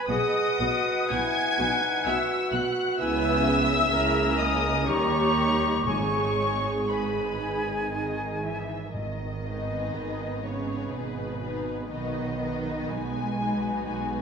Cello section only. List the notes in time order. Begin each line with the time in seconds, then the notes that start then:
0.09 B2
0.60 B2
1.10 B2
1.59 B2
2.06 B2
2.53 B2
2.99 C#3
3.92 C#3
4.87 D#3
5.87 G#2
7.92 D#3
8.43 E3
8.95 D#3
10.46 C#3
10.94 B2
11.91 D#3
12.93 G#3
13.88 G#3